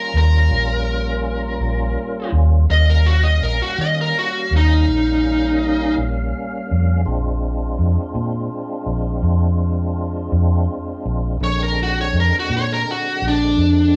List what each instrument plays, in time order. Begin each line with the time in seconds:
Already playing: tonewheel organ G3 A#3 C#4 F4, lead electric guitar A#4
0.14 fingered electric bass D#2, lead electric guitar A#4
0.51 fingered electric bass A#1
1.60 fingered electric bass A#1
2.32 fingered electric bass D#2
2.69 fingered electric bass D#2, tonewheel organ G3 A#3 C#4 F5, lead electric guitar D#5
2.90 lead electric guitar A#4
3.06 lead electric guitar F#4
3.23 lead electric guitar D#5
3.42 fingered electric bass A#1, lead electric guitar A#4
3.62 lead electric guitar F#4
3.78 fingered electric bass D#3, lead electric guitar D#5
4.01 lead electric guitar A#4
4.19 lead electric guitar F#4
4.51 fingered electric bass D#2
4.56 lead electric guitar D#4
4.88 fingered electric bass A#1
5.98 fingered electric bass A#1
6.71 fingered electric bass F2
7.05 fingered electric bass A#1, tonewheel organ G#3 C4 D4 F4
7.79 fingered electric bass F2
8.15 fingered electric bass A#2
8.86 fingered electric bass A#1
9.22 fingered electric bass F2
10.32 fingered electric bass F2
11.05 fingered electric bass A#1
11.40 fingered electric bass A#1, tonewheel organ D3 G#3 C4 D4, lead electric guitar C#5
11.63 lead electric guitar A#4
11.83 lead electric guitar F#4
12.01 lead electric guitar C#5
12.13 fingered electric bass F2
12.20 lead electric guitar A#4
12.39 lead electric guitar F#4
12.50 fingered electric bass A#2
12.57 lead electric guitar C#5
12.74 lead electric guitar A#4
12.91 lead electric guitar F#4
13.22 fingered electric bass A#1
13.28 lead electric guitar D4
13.57 fingered electric bass F2